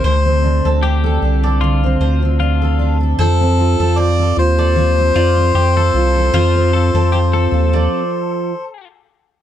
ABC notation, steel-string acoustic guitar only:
X:1
M:4/4
L:1/16
Q:"Swing 16ths" 1/4=76
K:Fmix
V:1 name="Steel-string acoustic guitar"
D, C D C D A D A D, C D C D A D A | F, C F C F A F A F, C F C F A F A | F, C F C F A F A z8 |]